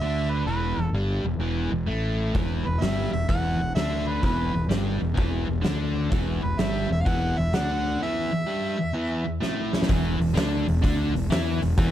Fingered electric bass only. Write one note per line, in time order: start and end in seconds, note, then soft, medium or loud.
0.00 0.43 D2 medium
0.46 0.76 E1 medium
0.77 0.92 E1 medium
0.93 1.23 G1 medium
1.24 1.39 E1 medium
1.39 1.69 E1 medium
1.72 1.86 E1 medium
1.88 2.32 A1 medium
2.35 2.64 E1 medium
2.66 2.81 E1 medium
2.82 3.11 G1 medium
3.13 3.28 E1 medium
3.29 3.59 E1 medium
3.59 3.74 E1 medium
3.76 4.20 D2 medium
4.23 4.53 E1 medium
4.55 4.69 E1 medium
4.70 4.99 G1 medium
5.02 5.17 E1 medium
5.18 5.47 E1 medium
5.49 5.63 E1 medium
5.65 6.08 D2 medium
6.12 6.41 E1 medium
6.43 6.58 E1 medium
6.58 6.88 G1 medium
6.90 7.05 E1 medium
7.06 7.35 E1 medium
7.38 7.52 E1 medium
7.52 7.96 D2 medium
9.90 10.18 E1 medium
10.20 10.34 E1 medium
10.35 10.65 D2 medium
10.67 10.82 E1 medium
10.84 11.13 D2 medium
11.15 11.29 E1 medium
11.30 11.59 E2 medium
11.61 11.75 E1 medium
11.78 11.91 E1 medium